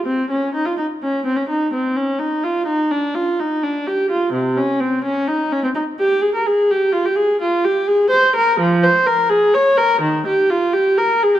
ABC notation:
X:1
M:12/8
L:1/16
Q:3/8=84
K:Dblyd
V:1 name="Viola"
C2 D2 E F E2 D2 C D E2 C2 D2 E2 F2 E2 | =D2 F2 E2 D2 G2 F2 C,2 _D2 C2 D2 E2 D C | [K:Ab] E2 G2 A B A2 G2 F G A2 F2 G2 A2 c2 B2 | F,2 c2 B2 A2 d2 B2 E,2 G2 F2 G2 B2 A G |]